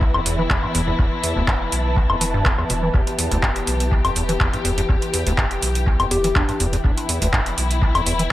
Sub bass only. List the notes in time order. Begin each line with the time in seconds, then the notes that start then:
Already playing: B1
0.14 E1
0.50 E1
0.75 E1
0.99 E1
1.37 E1
1.73 B1
2.10 E1
2.46 E1
2.70 E1
2.94 E1
3.32 E1
3.67 B1
4.05 E1
4.41 E1
4.65 E1
4.89 E1
5.27 E1
5.63 B1
6.00 E1
6.36 E1
6.60 E1
6.84 E1
7.22 E1
7.58 B1
7.95 E1